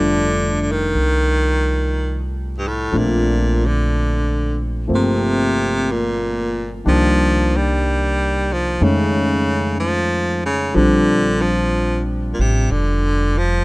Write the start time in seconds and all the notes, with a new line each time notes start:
Already playing: F1 D3 F3 G3 A3 D4
0.61 D3
0.71 D#3
0.95 C2
2.58 G2
2.68 A2
2.92 A#1 F3 A3 C4 D4
2.98 A#2
3.66 D3
4.88 G1 F3 A3 A#3 C4
4.95 C3
5.91 A#2
6.85 C2 D#3 F3 G3 A#3 D4
7.56 G3
8.53 F3
8.80 F2 C#3 D#3 G#3 A3 C#4
9.80 F3
10.45 C#3
10.74 A#1 D3 F3 G3 C4 D4
11.41 F3
12.34 A#2
12.39 A1 C3
12.69 F1 D3
13.38 F3